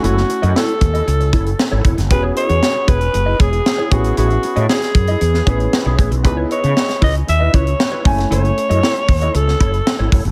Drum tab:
HH |x-xx-xxxxxxx--xx|x-xx--xxx-xx--xx|xxxx-xxxx-xx--xx|x-xx-xoxx-xx--ox|
SD |-o--o-------o--o|----o-------o---|----oo---o--o---|----oo------o--o|
BD |------o---o---o-|o-----o---o---o-|------o---o---o-|o-----o---o---o-|

HH |xxxx-xoxx-xx--ox|
SD |----o----o--o---|
BD |------o---o---o-|